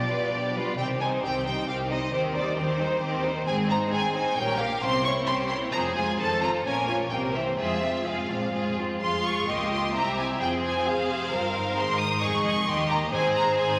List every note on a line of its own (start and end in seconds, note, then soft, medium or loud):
0.00 0.27 B1 soft
0.00 0.27 B2 soft
0.00 0.10 F3 soft
0.00 0.10 D4 soft
0.00 0.76 D5 medium
0.10 0.33 G3 soft
0.10 0.32 B3 soft
0.10 0.33 F4 soft
0.10 0.33 B4 soft
0.32 0.72 B1 soft
0.32 0.72 B2 soft
0.32 0.54 F3 soft
0.32 0.54 D4 soft
0.32 0.53 G4 soft
0.55 0.78 G3 soft
0.55 0.78 B3 soft
0.55 0.78 F4 soft
0.55 0.78 B4 soft
0.78 1.18 C2 soft
0.78 1.18 C3 medium
0.78 0.99 D#3 soft
0.78 0.99 C4 soft
0.78 0.99 G4 soft
0.78 0.86 G5 medium
1.00 1.23 G3 soft
1.00 1.23 D#4 soft
1.00 1.23 C5 soft
1.00 1.09 G#5 medium
1.23 1.63 C2 soft
1.23 1.63 C3 soft
1.23 1.46 D#3 soft
1.23 1.45 C4 soft
1.23 1.46 C4 soft
1.23 1.45 G4 soft
1.23 1.45 G5 medium
1.46 1.68 G3 soft
1.46 1.68 D#4 soft
1.46 1.68 C5 soft
1.46 1.68 G5 medium
1.67 2.07 C2 medium
1.67 2.07 C3 soft
1.67 1.89 D#3 soft
1.67 1.88 C4 soft
1.67 1.89 C4 soft
1.67 1.88 G4 soft
1.67 1.76 F5 medium
1.90 2.13 G3 soft
1.90 2.13 D#4 soft
1.90 2.13 C5 soft
1.90 2.12 D#5 medium
2.12 2.52 D#2 medium
2.12 2.52 D#3 medium
2.12 2.34 D#3 soft
2.12 2.33 C4 soft
2.12 2.34 C4 soft
2.12 2.34 G4 soft
2.12 2.21 C5 medium
2.35 2.58 G3 soft
2.35 2.58 D#4 soft
2.35 2.58 C5 soft
2.35 2.57 D5 medium
2.57 2.97 D#2 soft
2.57 2.80 D#3 soft
2.57 2.98 D#3 medium
2.57 2.80 C4 soft
2.57 2.80 G4 soft
2.57 3.45 C5 medium
2.80 3.03 G3 soft
2.80 3.03 D#4 soft
2.80 3.03 C5 soft
3.02 3.42 D#2 medium
3.02 3.42 D#3 soft
3.02 3.23 D#3 soft
3.02 3.23 C4 soft
3.02 3.23 G4 soft
3.24 3.47 G3 soft
3.24 3.47 D#4 soft
3.24 3.47 C5 soft
3.47 3.87 G#1 medium
3.47 3.87 G#2 medium
3.47 3.68 G#3 soft
3.47 3.68 C4 soft
3.47 3.68 G#4 soft
3.47 3.55 G#5 medium
3.69 3.90 G#3 soft
3.69 3.91 C4 soft
3.69 3.92 D#4 soft
3.69 3.92 C5 soft
3.69 3.78 A#5 medium
3.91 4.32 G#1 medium
3.91 4.32 G#2 medium
3.91 4.13 G#3 soft
3.91 4.14 C4 soft
3.91 4.13 C4 soft
3.91 4.14 G#4 soft
3.91 4.14 G#5 medium
4.14 4.37 G#3 soft
4.14 4.37 C4 soft
4.14 4.37 D#4 soft
4.14 4.37 C5 soft
4.14 4.37 G#5 medium
4.37 4.77 A#1 medium
4.37 4.77 A#2 medium
4.37 4.58 G3 soft
4.37 4.58 C#4 soft
4.37 4.58 A#4 soft
4.37 4.58 C#5 soft
4.37 4.60 G5 medium
4.59 4.82 A#3 soft
4.59 4.81 G4 soft
4.59 4.82 A#4 soft
4.59 4.82 F5 medium
4.82 5.22 C2 medium
4.82 5.22 C3 medium
4.82 5.03 C4 medium
4.82 5.03 C#4 soft
4.82 5.04 G4 soft
4.82 5.04 C5 soft
4.82 5.05 C6 medium
5.05 5.28 A#3 soft
5.05 5.26 C4 soft
5.05 5.28 E4 soft
5.05 5.27 C#5 soft
5.05 5.13 C#6 medium
5.27 5.68 C2 medium
5.27 5.68 C3 medium
5.27 5.49 C4 soft
5.27 5.50 C#4 soft
5.27 5.51 G4 medium
5.27 5.51 C5 medium
5.27 5.35 C6 medium
5.49 5.73 A#3 soft
5.49 5.72 C4 soft
5.49 5.73 E4 soft
5.49 5.74 C#5 soft
5.49 5.57 C6 medium
5.73 6.13 F1 medium
5.73 6.14 F2 medium
5.73 5.94 F3 soft
5.73 5.94 C4 soft
5.73 5.95 G#4 soft
5.73 5.95 C5 soft
5.73 5.81 A#5 medium
5.95 6.19 G#3 soft
5.95 6.20 F4 soft
5.95 6.19 G#4 medium
5.95 6.18 G#5 medium
6.19 6.59 F1 medium
6.19 6.59 F2 medium
6.19 6.40 D#3 soft
6.19 6.40 D#4 soft
6.19 6.41 A4 soft
6.19 6.41 C5 soft
6.19 6.42 A5 medium
6.42 6.65 F3 soft
6.42 6.65 C4 soft
6.42 6.65 F4 soft
6.42 6.65 A4 soft
6.42 6.50 A#5 medium
6.65 7.06 A#1 medium
6.65 7.06 A#2 medium
6.65 6.86 A#3 soft
6.65 6.86 C#4 soft
6.65 6.87 C#4 soft
6.65 6.87 A#4 soft
6.65 6.87 G#5 medium
6.88 7.11 F3 soft
6.88 7.11 A#3 soft
6.88 7.11 F4 soft
6.88 7.11 C#5 soft
6.88 6.96 G#5 medium
7.11 7.53 C2 medium
7.11 7.53 C3 medium
7.11 7.33 G3 soft
7.11 7.34 A#3 soft
7.11 7.33 C4 soft
7.11 7.34 A#4 soft
7.11 7.19 G5 medium
7.35 7.59 E3 soft
7.35 7.59 A#3 soft
7.35 7.59 C4 soft
7.35 7.59 C5 soft
7.35 7.43 E5 medium
7.58 8.01 F1 medium
7.58 8.01 F2 medium
7.58 7.81 G#3 soft
7.58 7.81 C4 soft
7.58 7.81 F4 soft
7.58 7.81 G#4 soft
7.58 8.06 E5 medium
7.82 8.06 F3 soft
7.82 8.05 G#3 soft
7.82 8.06 C4 soft
7.82 8.06 F4 soft
8.06 8.48 F1 soft
8.06 8.28 G#2 soft
8.06 8.29 G#3 soft
8.06 8.30 C4 soft
8.06 8.29 F4 soft
8.06 8.30 G#4 soft
8.06 8.78 F5 soft
8.30 8.53 A#2 medium
8.30 8.54 F3 soft
8.30 8.52 G#3 soft
8.30 8.54 C4 soft
8.30 8.52 F4 soft
8.53 8.96 F1 soft
8.53 8.77 G#2 soft
8.53 8.76 G#3 soft
8.53 8.76 C4 soft
8.53 8.76 F4 soft
8.53 8.76 G#4 soft
8.78 9.02 G#2 soft
8.78 9.02 F3 soft
8.78 9.00 G#3 soft
8.78 9.02 C4 soft
8.78 9.01 F4 soft
9.01 9.46 F1 soft
9.01 9.46 F2 soft
9.01 9.45 G#3 soft
9.01 9.46 F4 soft
9.01 9.45 G#4 soft
9.01 9.46 F5 soft
9.01 9.24 C6 medium
9.26 9.49 C#6 medium
9.48 9.95 C#2 soft
9.48 9.95 A#3 soft
9.48 9.95 F4 soft
9.48 9.94 G4 soft
9.48 9.96 D#5 soft
9.48 9.71 C6 medium
9.72 9.95 C6 medium
9.95 10.41 C2 medium
9.95 10.42 C2 medium
9.95 10.40 C4 soft
9.95 10.41 E4 soft
9.95 10.40 G4 soft
9.95 10.41 E5 soft
9.95 10.18 A#5 medium
10.19 10.27 G#5 medium
10.41 11.30 F1 medium
10.41 11.30 F2 medium
10.41 11.31 C4 soft
10.41 10.86 F4 soft
10.41 11.30 G#4 soft
10.41 10.86 C5 soft
10.41 10.50 G5 medium
10.65 10.87 G#5 medium
10.87 11.10 G#4 medium
10.87 11.76 C5 medium
10.87 11.78 F5 medium
11.10 11.33 G4 medium
11.32 11.78 G1 medium
11.32 11.77 G2 soft
11.32 11.77 C4 soft
11.32 11.55 F4 medium
11.32 12.23 A#4 soft
11.56 13.09 D#4 soft
11.77 12.23 G#1 medium
11.77 12.22 G#2 medium
11.77 12.21 G#3 soft
11.77 12.22 C5 soft
11.77 12.00 C6 medium
12.00 12.22 D#6 medium
12.23 12.68 F1 medium
12.23 12.68 F2 medium
12.23 12.67 G#3 soft
12.23 12.67 G#4 soft
12.23 12.67 D#5 medium
12.23 12.44 C#6 medium
12.45 12.67 C#6 medium
12.67 13.12 D#2 medium
12.67 13.11 A#3 medium
12.67 13.11 G4 medium
12.67 13.11 D#5 medium
12.67 12.90 C6 medium
12.90 12.98 A#5 medium
13.12 13.79 G#1 medium
13.12 13.79 G#2 medium
13.12 13.55 C4 medium
13.12 13.79 D#4 medium
13.12 13.56 G#4 medium
13.12 13.79 C5 medium
13.12 13.34 G#5 medium
13.35 13.57 A#5 medium
13.56 13.79 C4 medium
13.56 13.79 G#4 medium
13.56 13.79 G#5 medium